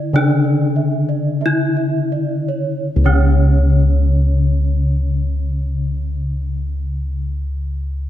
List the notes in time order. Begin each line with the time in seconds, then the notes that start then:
Already playing: D3 E4 D5
0.13 C#3 D3 D4 D5
0.45 D5
0.76 E5
1.09 D5
1.41 D4 E5
1.46 E4
1.77 E5
2.12 D5
2.48 C#5
2.96 C#2
3.04 C#3 C#4 C#5